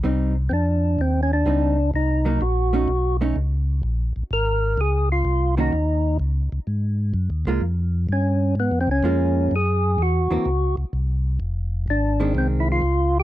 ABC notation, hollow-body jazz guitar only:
X:1
M:4/4
L:1/8
Q:"Swing" 1/4=127
K:Cphr
V:1 name="Hollow-body jazz guitar"
[G,CE] z4 z [G,CE] z | z [_G,B,E] z [=A,DE] z [A,^C^D] z2 | z6 z [E,B,D_G] | z6 z [A,B,F] |
z6 [A,B,F]2 | z3 [_F,B,C] z4 | z3 [E,A,C]3 z2 |]